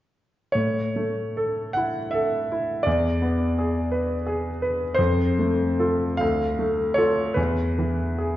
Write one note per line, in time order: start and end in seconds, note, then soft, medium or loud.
0.52 2.82 A2 soft
0.52 1.73 C#5 medium
0.96 1.59 A3 soft
1.37 1.99 A4 soft
1.73 2.37 E4 soft
1.73 2.12 F#5 medium
2.11 2.73 A4 soft
2.11 2.85 E5 soft
2.52 2.87 E4 soft
2.83 4.94 E2 soft
2.83 4.60 D5 medium
3.22 3.78 B3 soft
3.59 4.14 G#4 soft
3.92 4.48 B4 soft
4.27 4.83 G#4 soft
4.62 4.98 B4 soft
4.94 6.18 F2 soft
4.94 6.19 C5 medium
5.39 6.06 A3 soft
5.80 6.17 F4 soft
5.80 6.17 A4 soft
6.17 7.33 D2 soft
6.17 6.96 F5 medium
6.59 7.21 A3 soft
6.94 7.33 F4 soft
6.94 7.33 A4 soft
6.94 7.35 C#5 medium
7.34 8.37 E2 soft
7.34 8.37 B4 soft
7.79 8.37 E3 soft
8.18 8.37 G#4 soft